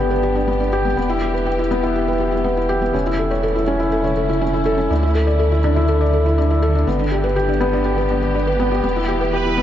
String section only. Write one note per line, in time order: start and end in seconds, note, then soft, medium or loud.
0.00 0.93 D3 medium
0.00 0.96 B3 medium
0.00 2.90 G4 medium
0.98 2.92 E3 medium
0.98 2.92 B3 medium
2.94 4.89 C#3 medium
2.94 6.83 A3 medium
2.94 6.83 E4 medium
4.90 8.80 D3 medium
6.87 9.62 B3 medium
6.87 9.62 G4 medium
8.84 9.62 E3 medium